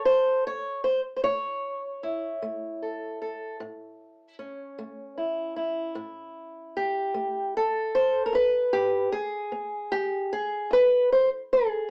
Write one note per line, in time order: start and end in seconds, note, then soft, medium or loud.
0.00 0.45 A4 medium
0.05 0.77 A3 medium
0.05 0.45 C5 medium
0.47 0.84 C#5 medium
0.84 1.00 C5 medium
1.16 1.23 C5 medium
1.24 1.95 A2 medium
1.24 5.17 C#5 loud
2.03 4.39 E4 medium
2.42 3.13 A3 medium
2.82 3.20 A4 soft
3.22 3.56 A4 soft
3.60 4.31 A2 medium
4.39 8.29 C#4 soft
4.79 5.50 A3 medium
5.18 5.56 E4 soft
5.56 7.94 E4 soft
5.95 6.67 A2 medium
6.77 7.55 G4 medium
7.14 7.86 A3 medium
7.57 8.34 A4 loud
7.95 8.25 C5 loud
8.26 8.33 A#4 medium
8.33 9.05 E2 medium
8.33 9.12 B4 medium
8.73 9.13 G4 loud
9.12 10.31 G#4 medium
9.52 10.23 B3 medium
9.92 10.31 G4 loud
10.33 10.72 G#4 loud
10.71 11.42 E2 medium
10.71 11.12 B4 loud
11.12 11.28 C5 medium
11.53 11.90 G#4 medium